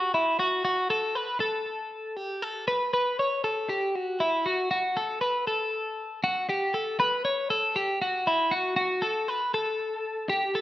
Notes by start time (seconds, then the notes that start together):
Already playing: F#4
0.14 E4
0.39 F#4
0.65 F#4
0.90 A4
1.15 B4
1.40 A4
2.17 G4
2.42 A4
2.68 B4
2.93 B4
3.19 C#5
3.44 A4
3.69 G4
3.95 F#4
4.20 E4
4.46 F#4
4.71 F#4
4.97 A4
5.21 B4
5.47 A4
6.24 F#4
6.49 G4
6.74 A4
7.00 B4
7.25 C#5
7.50 A4
7.76 G4
8.02 F#4
8.27 E4
8.51 F#4
8.76 F#4
9.02 A4
9.28 B4
9.54 A4
10.30 G4
10.55 A4